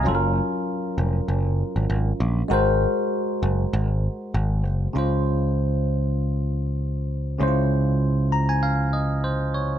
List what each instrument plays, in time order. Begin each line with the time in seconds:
0.03 picked electric bass F#1, tine electric piano F#3 C#4 F4
0.08 tine electric piano A4
0.15 tine electric piano A#4
0.98 picked electric bass F1
1.28 picked electric bass F#1
1.76 picked electric bass G#1
1.90 picked electric bass G#1
2.20 picked electric bass A#1
2.48 picked electric bass G#1, tine electric piano G#3 F#4 A#4
2.53 tine electric piano C5
3.43 picked electric bass F#1
3.73 picked electric bass G#1
4.34 picked electric bass G#1
4.65 picked electric bass F#1
4.93 picked electric bass C#2, tine electric piano C#3 C#4 F4
4.98 tine electric piano C5
7.38 picked electric bass C#2, tine electric piano C#3 C#4 E4
7.43 tine electric piano C5
7.48 tine electric piano F4
8.32 tine electric piano A#5
8.49 tine electric piano G#5
8.63 tine electric piano F5
8.93 tine electric piano D#5
9.24 tine electric piano C5
9.54 tine electric piano C#5